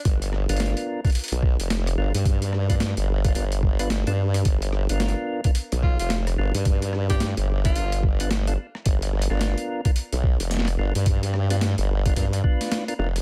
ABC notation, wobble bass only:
X:1
M:4/4
L:1/16
Q:"Swing 16ths" 1/4=109
K:Cmix
V:1 name="Wobble bass" clef=bass
G,,,3 G,,,2 z4 =B,,,2 F,,,3 G,,, G,,- | G,,4- G,, G,,,3 G,,,4 G,,, G,,3 | G,,,3 G,,,2 z4 =B,,,2 F,,,3 G,,, G,,- | G,,4- G,, G,,,3 G,,,6 z2 |
G,,,3 G,,,2 z4 =B,,,2 F,,,3 G,,, G,,- | G,,4- G,, G,,,3 G,,2 z4 F,,,2 |]